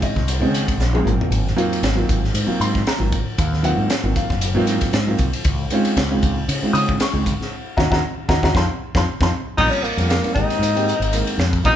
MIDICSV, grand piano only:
0, 0, Header, 1, 2, 480
1, 0, Start_track
1, 0, Tempo, 516796
1, 1218, Time_signature, 4, 2, 24, 8
1, 10922, End_track
2, 0, Start_track
2, 0, Title_t, "Grand piano"
2, 0, Program_c, 0, 0
2, 0, Note_on_c, 0, 51, 75
2, 0, Note_on_c, 0, 56, 66
2, 0, Note_on_c, 0, 60, 64
2, 0, Note_on_c, 0, 61, 68
2, 0, Note_on_c, 0, 65, 86
2, 29, Note_on_c, 0, 75, 92
2, 135, Note_off_c, 0, 51, 0
2, 137, Note_off_c, 0, 56, 0
2, 140, Note_off_c, 0, 60, 0
2, 143, Note_off_c, 0, 61, 0
2, 146, Note_off_c, 0, 65, 0
2, 253, Note_on_c, 0, 61, 16
2, 256, Note_off_c, 0, 75, 0
2, 273, Note_on_c, 0, 68, 18
2, 318, Note_off_c, 0, 61, 0
2, 328, Note_off_c, 0, 68, 0
2, 370, Note_on_c, 0, 51, 101
2, 374, Note_on_c, 0, 56, 96
2, 384, Note_on_c, 0, 60, 95
2, 384, Note_on_c, 0, 61, 93
2, 389, Note_on_c, 0, 63, 117
2, 680, Note_off_c, 0, 51, 0
2, 682, Note_off_c, 0, 56, 0
2, 687, Note_off_c, 0, 60, 0
2, 687, Note_off_c, 0, 61, 0
2, 689, Note_off_c, 0, 63, 0
2, 863, Note_on_c, 0, 51, 84
2, 869, Note_on_c, 0, 56, 75
2, 869, Note_on_c, 0, 60, 81
2, 873, Note_on_c, 0, 61, 78
2, 879, Note_on_c, 0, 68, 96
2, 955, Note_off_c, 0, 60, 0
2, 957, Note_on_c, 0, 54, 78
2, 964, Note_on_c, 0, 58, 74
2, 969, Note_on_c, 0, 60, 72
2, 974, Note_on_c, 0, 63, 73
2, 975, Note_off_c, 0, 51, 0
2, 977, Note_off_c, 0, 56, 0
2, 977, Note_on_c, 0, 65, 85
2, 979, Note_off_c, 0, 61, 0
2, 983, Note_off_c, 0, 68, 0
2, 1361, Note_off_c, 0, 54, 0
2, 1365, Note_off_c, 0, 58, 0
2, 1367, Note_off_c, 0, 60, 0
2, 1370, Note_off_c, 0, 63, 0
2, 1371, Note_off_c, 0, 65, 0
2, 1453, Note_on_c, 0, 58, 101
2, 1454, Note_on_c, 0, 54, 112
2, 1458, Note_on_c, 0, 60, 95
2, 1460, Note_on_c, 0, 63, 97
2, 1465, Note_on_c, 0, 65, 115
2, 1687, Note_off_c, 0, 54, 0
2, 1687, Note_off_c, 0, 58, 0
2, 1689, Note_off_c, 0, 60, 0
2, 1690, Note_off_c, 0, 63, 0
2, 1693, Note_off_c, 0, 65, 0
2, 1815, Note_on_c, 0, 54, 91
2, 1819, Note_on_c, 0, 58, 79
2, 1827, Note_on_c, 0, 60, 79
2, 1834, Note_on_c, 0, 65, 94
2, 1836, Note_on_c, 0, 63, 83
2, 2052, Note_off_c, 0, 54, 0
2, 2054, Note_off_c, 0, 58, 0
2, 2058, Note_off_c, 0, 60, 0
2, 2061, Note_off_c, 0, 65, 0
2, 2062, Note_off_c, 0, 63, 0
2, 2160, Note_on_c, 0, 63, 19
2, 2183, Note_on_c, 0, 65, 21
2, 2233, Note_off_c, 0, 63, 0
2, 2245, Note_off_c, 0, 65, 0
2, 2292, Note_on_c, 0, 54, 92
2, 2296, Note_on_c, 0, 58, 83
2, 2301, Note_on_c, 0, 60, 83
2, 2308, Note_on_c, 0, 63, 79
2, 2308, Note_on_c, 0, 65, 98
2, 2424, Note_on_c, 0, 84, 109
2, 2602, Note_off_c, 0, 54, 0
2, 2604, Note_off_c, 0, 58, 0
2, 2606, Note_off_c, 0, 60, 0
2, 2610, Note_off_c, 0, 63, 0
2, 2610, Note_off_c, 0, 65, 0
2, 2655, Note_off_c, 0, 84, 0
2, 2672, Note_on_c, 0, 82, 82
2, 2774, Note_on_c, 0, 54, 72
2, 2781, Note_on_c, 0, 60, 62
2, 2785, Note_on_c, 0, 58, 68
2, 2788, Note_on_c, 0, 63, 64
2, 2790, Note_on_c, 0, 65, 79
2, 2927, Note_off_c, 0, 54, 0
2, 2931, Note_off_c, 0, 60, 0
2, 2933, Note_off_c, 0, 58, 0
2, 2935, Note_off_c, 0, 63, 0
2, 2936, Note_off_c, 0, 65, 0
2, 3025, Note_on_c, 0, 63, 17
2, 3044, Note_on_c, 0, 65, 19
2, 3081, Note_off_c, 0, 63, 0
2, 3090, Note_off_c, 0, 65, 0
2, 3113, Note_off_c, 0, 82, 0
2, 3156, Note_on_c, 0, 77, 81
2, 3373, Note_on_c, 0, 54, 93
2, 3373, Note_on_c, 0, 58, 83
2, 3379, Note_on_c, 0, 60, 82
2, 3381, Note_off_c, 0, 77, 0
2, 3383, Note_on_c, 0, 63, 83
2, 3390, Note_on_c, 0, 78, 109
2, 3391, Note_on_c, 0, 65, 102
2, 3607, Note_off_c, 0, 58, 0
2, 3608, Note_off_c, 0, 54, 0
2, 3611, Note_off_c, 0, 60, 0
2, 3613, Note_off_c, 0, 63, 0
2, 3617, Note_off_c, 0, 65, 0
2, 3745, Note_on_c, 0, 58, 67
2, 3747, Note_on_c, 0, 54, 75
2, 3753, Note_on_c, 0, 60, 72
2, 3757, Note_on_c, 0, 63, 68
2, 3764, Note_on_c, 0, 65, 81
2, 3833, Note_off_c, 0, 78, 0
2, 3869, Note_on_c, 0, 77, 85
2, 3977, Note_off_c, 0, 58, 0
2, 3979, Note_off_c, 0, 54, 0
2, 3982, Note_off_c, 0, 60, 0
2, 3984, Note_off_c, 0, 63, 0
2, 3987, Note_off_c, 0, 65, 0
2, 4098, Note_off_c, 0, 77, 0
2, 4099, Note_on_c, 0, 63, 17
2, 4119, Note_on_c, 0, 66, 18
2, 4163, Note_off_c, 0, 63, 0
2, 4173, Note_off_c, 0, 66, 0
2, 4224, Note_on_c, 0, 54, 112
2, 4232, Note_on_c, 0, 58, 102
2, 4236, Note_on_c, 0, 60, 99
2, 4241, Note_on_c, 0, 63, 103
2, 4242, Note_on_c, 0, 65, 119
2, 4528, Note_off_c, 0, 54, 0
2, 4532, Note_off_c, 0, 58, 0
2, 4534, Note_off_c, 0, 60, 0
2, 4537, Note_off_c, 0, 63, 0
2, 4537, Note_off_c, 0, 65, 0
2, 4709, Note_on_c, 0, 54, 86
2, 4715, Note_on_c, 0, 58, 81
2, 4721, Note_on_c, 0, 60, 81
2, 4722, Note_on_c, 0, 63, 81
2, 4728, Note_on_c, 0, 65, 95
2, 4855, Note_off_c, 0, 54, 0
2, 4858, Note_off_c, 0, 58, 0
2, 4861, Note_off_c, 0, 60, 0
2, 4862, Note_off_c, 0, 63, 0
2, 4865, Note_off_c, 0, 65, 0
2, 4962, Note_on_c, 0, 63, 21
2, 4982, Note_on_c, 0, 65, 23
2, 5009, Note_off_c, 0, 63, 0
2, 5019, Note_off_c, 0, 65, 0
2, 5305, Note_on_c, 0, 56, 107
2, 5312, Note_on_c, 0, 60, 99
2, 5318, Note_on_c, 0, 61, 102
2, 5322, Note_on_c, 0, 63, 98
2, 5326, Note_on_c, 0, 65, 127
2, 5533, Note_off_c, 0, 56, 0
2, 5537, Note_off_c, 0, 60, 0
2, 5540, Note_off_c, 0, 61, 0
2, 5542, Note_off_c, 0, 63, 0
2, 5544, Note_off_c, 0, 65, 0
2, 5672, Note_on_c, 0, 56, 89
2, 5674, Note_on_c, 0, 60, 82
2, 5678, Note_on_c, 0, 61, 85
2, 5682, Note_on_c, 0, 63, 83
2, 5688, Note_on_c, 0, 65, 100
2, 5900, Note_off_c, 0, 56, 0
2, 5901, Note_off_c, 0, 60, 0
2, 5904, Note_off_c, 0, 61, 0
2, 5905, Note_off_c, 0, 63, 0
2, 5908, Note_off_c, 0, 65, 0
2, 6024, Note_on_c, 0, 63, 19
2, 6046, Note_on_c, 0, 65, 21
2, 6085, Note_off_c, 0, 63, 0
2, 6096, Note_off_c, 0, 65, 0
2, 6151, Note_on_c, 0, 56, 92
2, 6155, Note_on_c, 0, 60, 83
2, 6159, Note_on_c, 0, 61, 84
2, 6166, Note_on_c, 0, 63, 85
2, 6172, Note_on_c, 0, 65, 99
2, 6254, Note_on_c, 0, 87, 115
2, 6450, Note_off_c, 0, 56, 0
2, 6453, Note_off_c, 0, 60, 0
2, 6455, Note_off_c, 0, 61, 0
2, 6458, Note_off_c, 0, 63, 0
2, 6461, Note_off_c, 0, 65, 0
2, 6489, Note_off_c, 0, 87, 0
2, 6517, Note_on_c, 0, 85, 84
2, 6616, Note_on_c, 0, 56, 74
2, 6616, Note_on_c, 0, 60, 64
2, 6625, Note_on_c, 0, 61, 67
2, 6627, Note_on_c, 0, 63, 67
2, 6627, Note_on_c, 0, 68, 75
2, 6768, Note_off_c, 0, 56, 0
2, 6768, Note_off_c, 0, 60, 0
2, 6772, Note_off_c, 0, 61, 0
2, 6773, Note_off_c, 0, 63, 0
2, 6773, Note_off_c, 0, 68, 0
2, 6866, Note_on_c, 0, 63, 17
2, 6879, Note_on_c, 0, 68, 18
2, 6920, Note_off_c, 0, 63, 0
2, 6927, Note_off_c, 0, 68, 0
2, 6954, Note_off_c, 0, 85, 0
2, 7214, Note_on_c, 0, 82, 88
2, 7218, Note_on_c, 0, 75, 97
2, 7218, Note_on_c, 0, 78, 93
2, 7223, Note_on_c, 0, 63, 95
2, 7223, Note_on_c, 0, 66, 94
2, 7224, Note_on_c, 0, 61, 94
2, 7300, Note_off_c, 0, 82, 0
2, 7302, Note_off_c, 0, 75, 0
2, 7302, Note_off_c, 0, 78, 0
2, 7305, Note_off_c, 0, 63, 0
2, 7305, Note_off_c, 0, 66, 0
2, 7306, Note_off_c, 0, 61, 0
2, 7343, Note_on_c, 0, 78, 96
2, 7351, Note_on_c, 0, 66, 95
2, 7352, Note_on_c, 0, 63, 91
2, 7353, Note_on_c, 0, 75, 94
2, 7353, Note_on_c, 0, 82, 94
2, 7359, Note_on_c, 0, 61, 94
2, 7415, Note_off_c, 0, 78, 0
2, 7420, Note_off_c, 0, 63, 0
2, 7420, Note_off_c, 0, 66, 0
2, 7421, Note_off_c, 0, 75, 0
2, 7421, Note_off_c, 0, 82, 0
2, 7424, Note_off_c, 0, 61, 0
2, 7694, Note_on_c, 0, 82, 98
2, 7699, Note_on_c, 0, 78, 95
2, 7703, Note_on_c, 0, 75, 100
2, 7705, Note_on_c, 0, 63, 89
2, 7706, Note_on_c, 0, 61, 92
2, 7706, Note_on_c, 0, 66, 89
2, 7779, Note_off_c, 0, 82, 0
2, 7782, Note_off_c, 0, 78, 0
2, 7785, Note_off_c, 0, 75, 0
2, 7786, Note_off_c, 0, 61, 0
2, 7786, Note_off_c, 0, 63, 0
2, 7786, Note_off_c, 0, 66, 0
2, 7828, Note_on_c, 0, 61, 92
2, 7831, Note_on_c, 0, 78, 92
2, 7832, Note_on_c, 0, 63, 93
2, 7833, Note_on_c, 0, 66, 90
2, 7839, Note_on_c, 0, 75, 92
2, 7840, Note_on_c, 0, 82, 88
2, 7897, Note_off_c, 0, 61, 0
2, 7899, Note_off_c, 0, 78, 0
2, 7900, Note_off_c, 0, 63, 0
2, 7901, Note_off_c, 0, 66, 0
2, 7904, Note_off_c, 0, 75, 0
2, 7905, Note_off_c, 0, 82, 0
2, 7931, Note_on_c, 0, 63, 92
2, 7937, Note_on_c, 0, 60, 91
2, 7937, Note_on_c, 0, 65, 92
2, 7957, Note_on_c, 0, 84, 94
2, 7961, Note_on_c, 0, 81, 89
2, 7962, Note_on_c, 0, 77, 94
2, 8017, Note_off_c, 0, 63, 0
2, 8021, Note_off_c, 0, 60, 0
2, 8021, Note_off_c, 0, 65, 0
2, 8033, Note_off_c, 0, 84, 0
2, 8035, Note_off_c, 0, 81, 0
2, 8036, Note_off_c, 0, 77, 0
2, 8312, Note_on_c, 0, 63, 91
2, 8312, Note_on_c, 0, 65, 86
2, 8318, Note_on_c, 0, 60, 92
2, 8333, Note_on_c, 0, 77, 86
2, 8334, Note_on_c, 0, 84, 88
2, 8338, Note_on_c, 0, 81, 85
2, 8379, Note_off_c, 0, 63, 0
2, 8380, Note_off_c, 0, 65, 0
2, 8383, Note_off_c, 0, 60, 0
2, 8392, Note_off_c, 0, 77, 0
2, 8393, Note_off_c, 0, 84, 0
2, 8395, Note_off_c, 0, 81, 0
2, 8558, Note_on_c, 0, 63, 91
2, 8558, Note_on_c, 0, 65, 91
2, 8559, Note_on_c, 0, 60, 90
2, 8570, Note_on_c, 0, 81, 94
2, 8571, Note_on_c, 0, 84, 93
2, 8576, Note_on_c, 0, 77, 94
2, 8623, Note_off_c, 0, 63, 0
2, 8623, Note_off_c, 0, 65, 0
2, 8624, Note_off_c, 0, 60, 0
2, 8630, Note_off_c, 0, 81, 0
2, 8631, Note_off_c, 0, 84, 0
2, 8633, Note_off_c, 0, 77, 0
2, 8898, Note_on_c, 0, 55, 82
2, 8899, Note_on_c, 0, 58, 77
2, 8905, Note_on_c, 0, 60, 74
2, 8912, Note_on_c, 0, 61, 74
2, 8919, Note_on_c, 0, 65, 88
2, 9127, Note_off_c, 0, 55, 0
2, 9128, Note_off_c, 0, 58, 0
2, 9131, Note_off_c, 0, 60, 0
2, 9134, Note_off_c, 0, 61, 0
2, 9138, Note_off_c, 0, 65, 0
2, 9261, Note_on_c, 0, 55, 68
2, 9271, Note_on_c, 0, 58, 62
2, 9275, Note_on_c, 0, 60, 63
2, 9280, Note_on_c, 0, 61, 58
2, 9281, Note_on_c, 0, 65, 72
2, 9409, Note_off_c, 0, 55, 0
2, 9413, Note_off_c, 0, 58, 0
2, 9415, Note_off_c, 0, 60, 0
2, 9418, Note_off_c, 0, 61, 0
2, 9419, Note_off_c, 0, 65, 0
2, 9495, Note_on_c, 0, 55, 69
2, 9502, Note_on_c, 0, 58, 66
2, 9510, Note_on_c, 0, 60, 62
2, 9512, Note_on_c, 0, 61, 62
2, 9516, Note_on_c, 0, 63, 77
2, 9601, Note_off_c, 0, 58, 0
2, 9608, Note_off_c, 0, 60, 0
2, 9609, Note_off_c, 0, 55, 0
2, 9610, Note_on_c, 0, 51, 69
2, 9612, Note_on_c, 0, 56, 63
2, 9615, Note_on_c, 0, 58, 65
2, 9617, Note_off_c, 0, 61, 0
2, 9619, Note_off_c, 0, 63, 0
2, 9622, Note_on_c, 0, 60, 63
2, 9622, Note_on_c, 0, 67, 74
2, 9905, Note_off_c, 0, 51, 0
2, 9906, Note_off_c, 0, 56, 0
2, 9907, Note_off_c, 0, 58, 0
2, 9911, Note_off_c, 0, 60, 0
2, 9911, Note_off_c, 0, 67, 0
2, 9975, Note_on_c, 0, 56, 78
2, 9976, Note_on_c, 0, 51, 85
2, 9984, Note_on_c, 0, 58, 77
2, 9991, Note_on_c, 0, 60, 79
2, 9996, Note_on_c, 0, 67, 97
2, 10125, Note_off_c, 0, 56, 0
2, 10126, Note_off_c, 0, 51, 0
2, 10130, Note_off_c, 0, 58, 0
2, 10133, Note_off_c, 0, 60, 0
2, 10136, Note_off_c, 0, 67, 0
2, 10222, Note_on_c, 0, 60, 17
2, 10242, Note_on_c, 0, 67, 19
2, 10276, Note_off_c, 0, 60, 0
2, 10286, Note_off_c, 0, 67, 0
2, 10332, Note_on_c, 0, 51, 75
2, 10337, Note_on_c, 0, 56, 73
2, 10338, Note_on_c, 0, 58, 74
2, 10346, Note_on_c, 0, 60, 75
2, 10347, Note_on_c, 0, 70, 91
2, 10646, Note_off_c, 0, 51, 0
2, 10648, Note_off_c, 0, 56, 0
2, 10649, Note_off_c, 0, 58, 0
2, 10653, Note_off_c, 0, 60, 0
2, 10653, Note_off_c, 0, 70, 0
2, 10809, Note_on_c, 0, 49, 87
2, 10815, Note_on_c, 0, 55, 80
2, 10821, Note_on_c, 0, 58, 75
2, 10824, Note_on_c, 0, 60, 78
2, 10832, Note_on_c, 0, 65, 93
2, 10922, Note_off_c, 0, 49, 0
2, 10922, Note_off_c, 0, 55, 0
2, 10922, Note_off_c, 0, 58, 0
2, 10922, Note_off_c, 0, 60, 0
2, 10922, Note_off_c, 0, 65, 0
2, 10922, End_track
0, 0, End_of_file